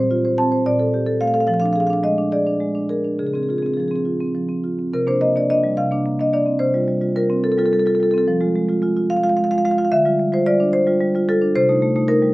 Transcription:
Already playing: A#2 C5
0.11 F4
0.25 C5
0.38 C4 A5
0.52 C5
0.66 A#2 D5
0.79 A4
0.94 G4
1.07 A4
1.21 A3 F5
1.27 F5
1.34 A4 F5
1.40 F5
1.47 F3 F5
1.54 F5
1.60 D4 F5
1.66 F5
1.73 G#4 F5
1.80 F5
1.87 D4 F5
1.93 F5
2.03 G#3 D#5
2.18 D4
2.32 G#4 D5
2.47 D4
2.60 G#3
2.75 D4
2.89 G#4 A#4
3.04 D4
3.19 C#3 G#4
3.27 G#4
3.34 C4 G#4
3.43 G#4
3.49 F4 G#4
3.58 G#4
3.63 C4 G#4
3.73 F3 G#4
3.80 G#4
3.88 C4 G#4
3.96 G#4
4.05 F4
4.20 C4
4.35 F3
4.49 C4
4.64 F4
4.79 C4
4.93 C3 A#4
5.07 A#3 D4 C5
5.21 A#3 D#5
5.36 A#3 D4 D5
5.50 A#3 D4 D#5
5.64 G3
5.77 C3 F5
5.91 A#3 D4
6.06 A#3
6.20 A#3 D4 D#5
6.33 A#3 D4 D5
6.46 C4
6.59 C3 C5
6.74 G3 F4
6.88 G3
7.01 G3 F4
7.16 G3 F4 A#4
7.30 C4
7.44 A4
7.52 A4
7.58 G3 F4 A4
7.66 A4
7.72 G3 A4
7.79 A4
7.86 G3 F4 A4
7.95 A4
8.00 G3 F4 A4
8.11 C4 A4
8.18 A4
8.28 F3
8.41 G#3 F4
8.55 G#3
8.69 G#3 F4
8.82 G#3 F4
8.97 F4
9.10 F5
9.17 F5
9.23 G#3 F4 F5
9.29 F5
9.37 G#3 F5
9.44 F5
9.51 G#3 F4 F5
9.58 F5
9.65 G#3 F4 F5
9.71 F5
9.78 F4 F5
9.85 F5
9.92 D3 E5
10.05 G3 F4
10.19 G3
10.32 G3 F4 C5
10.46 G3 F4 D5
10.60 D4
10.73 C5
10.86 G3 F4
11.01 G3
11.15 G3 F4
11.29 G3 F4 A4
11.42 D4
11.55 C3 C5
11.69 A3 D#4
11.82 A3
11.96 A3 D#4
12.08 A3 D#4 A#4
12.22 G3

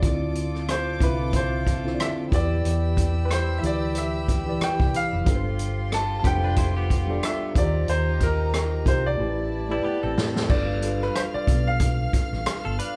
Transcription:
Already playing: D5
0.01 D2 D3 C4 E4 F4 A4 D5 D6, kick, closed hi-hat
0.35 closed hi-hat
0.55 cross-stick
0.69 C5, cross-stick, closed hi-hat
0.99 C2 D3 C4 E4 F4 E5, kick, closed hi-hat
1.03 B4
1.33 C5, kick, closed hi-hat
1.67 kick, closed hi-hat
1.84 D3 C4 E4 F4, cross-stick
1.88 C5
1.94 D5
2.00 E5, cross-stick, closed hi-hat
2.30 E2 E3 E4 G4 B4 D5 B5 E6, kick, closed hi-hat
2.34 D5
2.65 E2, closed hi-hat
2.97 kick, closed hi-hat
3.25 B4
3.31 C5, cross-stick, closed hi-hat
3.59 E3 E4 G4 E5
3.63 D2 B4 D5, closed hi-hat
3.95 E5, closed hi-hat
4.28 kick, closed hi-hat
4.45 E3 E4 G4 B4 D5
4.61 G5, muted fingered electric bass stroke, cross-stick, closed hi-hat
4.80 C2, kick
4.94 F5, closed hi-hat
5.13 F1
5.24 G1 G3 D4 F4 G4 A4 C6, kick, closed hi-hat
5.28 B4
5.35 C5
5.59 closed hi-hat
5.92 A5, cross-stick, closed hi-hat
6.20 G3 D4 A5
6.24 F1 B3 F4 G4 A4 C5 G5, kick, closed hi-hat
6.44 D4 B4
6.56 E4 C5, kick, closed hi-hat
6.77 B3 G4
6.90 kick, closed hi-hat
7.07 G3 D4 F4 A4 D5
7.23 E5, cross-stick, closed hi-hat
7.54 D#2 D#3 D#4 F4 G4 A#5, kick, closed hi-hat
7.58 C5 D5
7.88 D#2 C5, closed hi-hat
8.20 A#4, kick, closed hi-hat
8.54 cross-stick, closed hi-hat
8.85 C2 D#3 D#4 F4 G4 C5, kick, closed hi-hat
8.89 C5
9.06 D5
9.17 A1 A3 E4 G4 B4 D5 A5
9.21 D5
9.69 G3 A3 E4 G4 B4 D5
9.84 B3 G4, muted fingered electric bass stroke
10.03 A1 C4 A4
10.18 A2, snare
10.36 snare
10.48 G1 G3 D4 F4 A4 B4 D5 F5 F6, kick, crash
10.81 G3 D4 F4 A4 B4, closed hi-hat
11.02 B4, cross-stick
11.16 C5, cross-stick, closed hi-hat
11.34 D5, muted fingered electric bass stroke
11.47 B1, kick, closed hi-hat
11.67 F5
11.80 kick, closed hi-hat
12.13 muted fingered electric bass stroke, kick, closed hi-hat
12.33 A1, cross-stick
12.46 muted fingered electric bass stroke, cross-stick, closed hi-hat
12.65 G1 A4
12.79 D4 B4, closed hi-hat

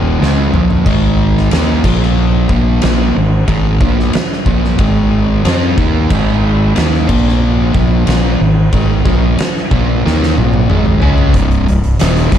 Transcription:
Already playing: D#1 D#2 A#2 D#3
0.20 C#2 C#3 G#3 C#4, snare
0.53 A#1 A#2 F3 A#3, mid tom
0.70 floor tom
0.85 G#1 G#2 D#3 G#3, kick, crash
1.37 snare
1.51 D#2 D#3 A#3 D#4, snare, ride bell
1.84 A#1 A#2 F3 A#3, kick, crash
2.02 snare
2.49 A#1 A#2 F3 A#3, kick
2.82 A#1 A#2 F3 A#3, snare, ride bell
3.16 G#1 G#2 D#3
3.48 G#1 G#2 D#3 G#3, kick, ride bell
3.81 A#1 A#2 F3 A#3, kick
4.00 snare
4.13 muted distorted electric guitar stroke, muted fingered electric bass stroke, snare, ride bell
4.33 snare
4.45 A#1 A#2 F3 A#3, kick
4.64 snare
4.79 G#1 G#2 D#3 G#3, kick, ride bell
5.44 F2 F3 C4 F4, snare, ride bell
5.76 D#2 D#3 A#3 D#4, kick
6.09 G#1 G#2 D#3 G#3, kick, crash
6.74 D#2 D#3 A#3 D#4, snare, ride bell
6.95 snare
7.07 A#1 A#2 F3 A#3, kick, crash
7.28 snare
7.73 A#1 A#2 F3 A#3, kick
8.07 A#1 A#2 F3 A#3, snare, ride bell
8.40 G#1 G#2 D#3
8.73 G#1 G#2 D#3 G#3, kick, ride bell
9.06 A#1 A#2 F3 A#3, kick
9.39 muted fingered electric bass stroke, muted distorted electric guitar stroke, snare, ride bell
9.57 snare
9.71 A#1 A#2 F3 A#3, kick
10.05 D#2 D#3 A#3 D#4, snare
10.23 snare
10.36 A#1 A#2 F3 A#3, high tom
10.53 high tom
10.69 G#1 G#2 D#3 G#3, mid tom
10.86 mid tom
11.01 C#2 C#3 G#3 C#4, floor tom
11.18 floor tom
11.33 C1 C2 G2 C3, kick, closed hi-hat
11.51 closed hi-hat
11.67 C1 C2 G2, closed hi-hat
11.84 closed hi-hat
11.99 D#1 D#2 A#2 D#3, snare, closed hi-hat
12.17 closed hi-hat
12.32 C1 C2 G2 C3, kick, closed hi-hat

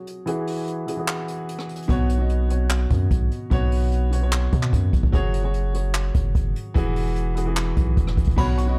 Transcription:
Already playing: F#3 F#4 G#4 C#5
0.07 closed hi-hat
0.26 E3 E4 F#4 G#4, closed hi-hat
0.47 open hi-hat
0.67 closed hi-hat
0.87 E3 E4 F#4 G#4, closed hi-hat
0.97 E3 E4 F#4 G#4
1.08 clap, closed hi-hat
1.28 closed hi-hat
1.49 closed hi-hat
1.59 cross-stick
1.69 closed hi-hat
1.76 closed hi-hat
1.82 closed hi-hat
1.88 B1 B2 B3 F#4 C#5, kick, closed hi-hat
2.09 closed hi-hat
2.18 B2 B3 F#4 D#5
2.29 closed hi-hat
2.49 B2 B3 F#4 C#5, closed hi-hat
2.70 clap, closed hi-hat
2.90 F#2, kick, closed hi-hat
3.11 B1, kick, closed hi-hat
3.31 closed hi-hat
3.50 B1 B2 B3 F#4 C#5, kick, closed hi-hat
3.72 open hi-hat
3.92 closed hi-hat
4.11 B2 B3 F#4 C#5, closed hi-hat
4.21 B2 B3 F#4 C#5
4.32 clap, closed hi-hat
4.52 B2, kick, closed hi-hat
4.63 clap
4.73 F#2, kick, closed hi-hat
4.93 B1, kick, closed hi-hat
5.03 B1, kick
5.12 F#1 F#3 F#4 G#4 C#5, kick, closed hi-hat
5.34 closed hi-hat
5.43 F#3 F#4 G#4 C#5
5.54 closed hi-hat
5.73 F#3 F#4 G#4 C#5, closed hi-hat
5.94 clap, closed hi-hat
6.14 F#1, kick, closed hi-hat
6.35 F#1, kick, closed hi-hat
6.56 closed hi-hat
6.74 E1 E3 E4 F#4 G#4, kick, closed hi-hat
6.96 open hi-hat
7.16 closed hi-hat
7.35 E3 E4 F#4 G#4, closed hi-hat
7.45 E3 E4 F#4 G#4
7.57 clap, closed hi-hat
7.77 B1, kick, closed hi-hat
7.97 E1, kick, closed hi-hat
8.07 cross-stick
8.17 E1, kick, closed hi-hat
8.24 E1, kick, closed hi-hat
8.31 closed hi-hat
8.36 B1 B2 B3 F#4 C#5 B5, kick, crash
8.58 C#6, closed hi-hat
8.67 B2 B3 F#4 D#5

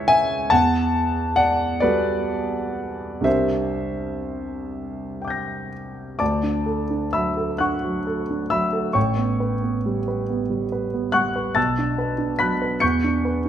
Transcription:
Already playing: C#2 G#3 C#4 E4 B4 C#5 E5 G#5 C#6
0.08 E5 G#5
0.50 E2 F#5 A5
1.36 D5 F#5
1.80 G3 B3 F#4 A4 B4 D5
3.21 C2 G3 D4 G4 A#4 E5
3.25 C5
5.22 G5 D6
5.28 G6 A#6
6.19 D2 D5 A5 D6
6.43 D4
6.66 A4
6.90 D4
7.13 F#3 E5 B5 E6
7.37 A4
7.58 D4 F#5 C#6 F#6
7.84 F#3
8.07 A4
8.30 D4
8.50 F#3 E5 B5 E6
8.73 A4
8.93 A1 C#5 G5 C#6
9.17 B3
9.40 B4
9.63 B3
9.86 G3
10.08 B4
10.30 B3
10.50 G3
10.72 B4
10.94 B3
11.12 G3 F#5 C#6 F#6
11.36 B4
11.55 B1 A5 E6 A6
11.79 D4
11.98 B4
12.18 D4
12.39 F#3 B5 F#6 B6
12.62 B4
12.80 E2 C#6 G6 C#7
13.04 D4
13.25 B4
13.45 D4

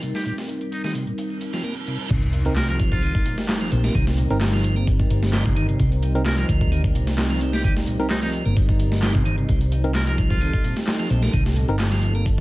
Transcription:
Already playing: G3 C4 D#4 A#4
0.03 C3, closed hi-hat
0.15 G4, snare, closed hi-hat
0.26 A#2 G4, closed hi-hat
0.38 snare, closed hi-hat
0.49 closed hi-hat
0.61 closed hi-hat
0.72 D#4, closed hi-hat
0.84 D#3 D#4, snare, closed hi-hat
0.95 C3, closed hi-hat
1.07 A#2, closed hi-hat
1.18 closed hi-hat, reverse cymbal
1.30 closed hi-hat
1.41 closed hi-hat
1.53 F3, snare, closed hi-hat
1.64 A#3, closed hi-hat
1.76 closed hi-hat
1.87 C3, closed hi-hat
1.99 closed hi-hat
2.10 C2 C3 G3 C4 D#4 A#4, kick, closed hi-hat, crash, sub drop
2.22 closed hi-hat
2.33 closed hi-hat
2.45 C4 D#4 A#4, closed hi-hat
2.56 A#4, snare, clap, closed hi-hat
2.68 F3 A#4, closed hi-hat
2.79 kick, closed hi-hat
2.91 F4, kick, closed hi-hat
3.02 D#3, closed hi-hat
3.15 kick, closed hi-hat
3.26 A#2, closed hi-hat
3.38 snare, closed hi-hat
3.49 snare, clap, closed hi-hat
3.61 F3, snare, closed hi-hat
3.72 A#1 C4, closed hi-hat
3.84 A#3, snare, closed hi-hat
3.95 C2 D#3, kick, closed hi-hat
4.07 snare, closed hi-hat
4.18 A#2, closed hi-hat
4.30 G1 C4 D#4 A#4, closed hi-hat
4.41 snare, clap, closed hi-hat
4.53 F3, snare, closed hi-hat
4.64 closed hi-hat
4.76 A#3, closed hi-hat
4.87 kick, closed hi-hat
5.00 kick, closed hi-hat
5.10 G1, closed hi-hat
5.23 snare, closed hi-hat
5.33 G3, snare, clap, closed hi-hat
5.45 C3, kick, closed hi-hat
5.56 D#3, closed hi-hat
5.69 C3, closed hi-hat
5.79 C2 C3, kick, closed hi-hat
5.92 closed hi-hat
6.03 closed hi-hat
6.15 C4 D#4 A#4, closed hi-hat
6.26 A#4, snare, clap, closed hi-hat
6.38 F3 A#4, closed hi-hat
6.49 D2, kick, closed hi-hat
6.61 kick, closed hi-hat
6.72 D#3, closed hi-hat
6.84 kick, closed hi-hat
6.95 C2 A#2, closed hi-hat
7.07 snare, closed hi-hat
7.18 snare, clap, closed hi-hat
7.30 F3, snare, closed hi-hat
7.41 C4, closed hi-hat
7.53 A#3 G4, snare, closed hi-hat
7.64 D#3 G4, kick, closed hi-hat
7.77 snare, closed hi-hat
7.87 A#2, closed hi-hat
8.00 C4 D#4 A#4, closed hi-hat
8.10 D#4, snare, clap, closed hi-hat
8.22 F3 D#4, snare, closed hi-hat
8.33 closed hi-hat
8.45 G1 A#3, closed hi-hat
8.56 kick, closed hi-hat
8.69 kick, closed hi-hat
8.79 closed hi-hat
8.92 snare, closed hi-hat
9.03 G3, snare, clap, closed hi-hat
9.15 C3, kick, closed hi-hat
9.26 D#3, closed hi-hat
9.38 C3, closed hi-hat
9.48 C2 C3 A4, kick, closed hi-hat
9.61 closed hi-hat
9.72 closed hi-hat
9.84 C4 D#4 A#4, closed hi-hat
9.95 A#4, snare, clap, closed hi-hat
10.07 F3 A#4, closed hi-hat
10.18 kick, closed hi-hat
10.30 F4, kick, closed hi-hat
10.41 D#3, closed hi-hat
10.53 kick, closed hi-hat
10.64 A#2, closed hi-hat
10.76 snare, closed hi-hat
10.87 snare, clap, closed hi-hat
10.99 F3, snare, closed hi-hat
11.10 A#1 C4, closed hi-hat
11.22 A#3, snare, closed hi-hat
11.33 C2 D#3, kick, closed hi-hat
11.45 snare, closed hi-hat
11.56 A#2, closed hi-hat
11.68 G1 C4 D#4 A#4, closed hi-hat
11.79 snare, clap, closed hi-hat
11.92 F3, snare, closed hi-hat
12.03 closed hi-hat
12.15 A#3, closed hi-hat
12.26 kick, closed hi-hat

